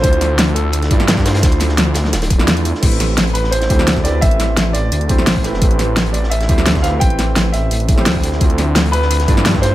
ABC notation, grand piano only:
X:1
M:4/4
L:1/8
Q:1/4=172
K:Am
V:1 name="Grand piano"
c2 z A2 z3 | z8 | z3 B c3 d | e3 d3 z2 |
z3 d e3 f | g3 e3 z2 | z3 B4 c |]